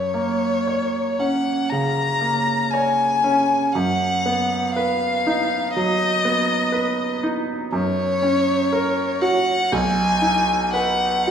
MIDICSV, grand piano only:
0, 0, Header, 1, 2, 480
1, 0, Start_track
1, 0, Key_signature, 6, "major"
1, 0, Tempo, 1029160
1, 1745, Time_signature, 4, 2, 24, 8
1, 1745, Tempo, 998336
1, 4625, Tempo, 1032702
1, 5358, End_track
2, 0, Start_track
2, 0, Title_t, "Grand piano"
2, 0, Program_c, 0, 0
2, 0, Control_c, 0, 64, 127
2, 0, Note_on_c, 0, 42, 29
2, 65, Note_on_c, 0, 58, 30
2, 315, Note_on_c, 0, 73, 33
2, 460, Note_off_c, 0, 58, 0
2, 556, Note_on_c, 0, 61, 29
2, 701, Note_off_c, 0, 73, 0
2, 776, Note_off_c, 0, 42, 0
2, 802, Note_on_c, 0, 49, 30
2, 933, Note_off_c, 0, 61, 0
2, 1031, Note_on_c, 0, 58, 29
2, 1174, Note_off_c, 0, 49, 0
2, 1276, Note_on_c, 0, 73, 33
2, 1412, Note_off_c, 0, 58, 0
2, 1511, Note_on_c, 0, 61, 33
2, 1656, Note_off_c, 0, 73, 0
2, 1748, Note_off_c, 0, 61, 0
2, 1749, Note_on_c, 0, 42, 39
2, 1754, Control_c, 0, 64, 0
2, 1829, Control_c, 0, 64, 127
2, 1993, Note_on_c, 0, 59, 34
2, 2237, Note_on_c, 0, 71, 39
2, 2381, Note_off_c, 0, 59, 0
2, 2478, Note_on_c, 0, 63, 38
2, 2623, Note_off_c, 0, 71, 0
2, 2698, Note_off_c, 0, 42, 0
2, 2718, Note_on_c, 0, 54, 35
2, 2858, Note_off_c, 0, 63, 0
2, 2951, Note_on_c, 0, 59, 36
2, 3092, Note_off_c, 0, 54, 0
2, 3179, Note_on_c, 0, 71, 36
2, 3330, Note_off_c, 0, 59, 0
2, 3424, Note_on_c, 0, 63, 37
2, 3567, Note_off_c, 0, 71, 0
2, 3660, Note_on_c, 0, 42, 42
2, 3666, Note_off_c, 0, 63, 0
2, 3674, Control_c, 0, 64, 0
2, 3759, Control_c, 0, 64, 127
2, 3900, Note_on_c, 0, 61, 37
2, 4141, Note_on_c, 0, 70, 40
2, 4284, Note_off_c, 0, 61, 0
2, 4378, Note_on_c, 0, 66, 39
2, 4529, Note_off_c, 0, 70, 0
2, 4603, Note_off_c, 0, 42, 0
2, 4621, Note_on_c, 0, 35, 49
2, 4623, Note_off_c, 0, 66, 0
2, 4633, Control_c, 0, 64, 0
2, 4719, Control_c, 0, 64, 127
2, 4851, Note_on_c, 0, 63, 31
2, 5092, Note_on_c, 0, 71, 37
2, 5240, Note_off_c, 0, 63, 0
2, 5341, Note_on_c, 0, 66, 34
2, 5358, Note_off_c, 0, 35, 0
2, 5358, Note_off_c, 0, 66, 0
2, 5358, Note_off_c, 0, 71, 0
2, 5358, End_track
0, 0, End_of_file